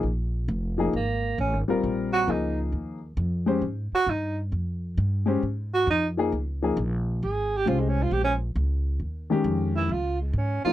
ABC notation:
X:1
M:4/4
L:1/16
Q:"Swing" 1/4=134
K:Ebmix
V:1 name="Tenor saxophone"
z8 B,4 D2 z2 | z2 _G2 E2 z8 z2 | z2 _G2 E2 z8 z2 | z2 _G2 E2 z8 z2 |
A3 G F A, D F G D z6 | z6 _F2 =F2 A,2 D2 F2 |]
V:2 name="Grand piano"
z6 [F,B,EA]2 z6 [G,CFB]2- | [G,CFB]4 [F,B,EA]6 z4 [A,DGc]2 | z12 z2 [A,DGc]2 | z6 [F,B,EA]2 z2 [F,B,EA]2 z4 |
z4 [A,DGc]6 z6 | z2 [E,A,DG]6 z6 [F,B,EF]2 |]
V:3 name="Upright bass" clef=bass
B,,,4 F,,,4 A,,,4 (3=A,,,2 _A,,,2 E,,,2 | B,,,4 D,,4 E,,4 F,,4 | A,,2 z2 G,,4 F,,4 G,,4 | A,,4 F,,4 D,,4 B,,,4 |
A,,,4 C,,4 B,,,4 D,,4 | E,,4 F,,4 D,,4 A,,2 z2 |]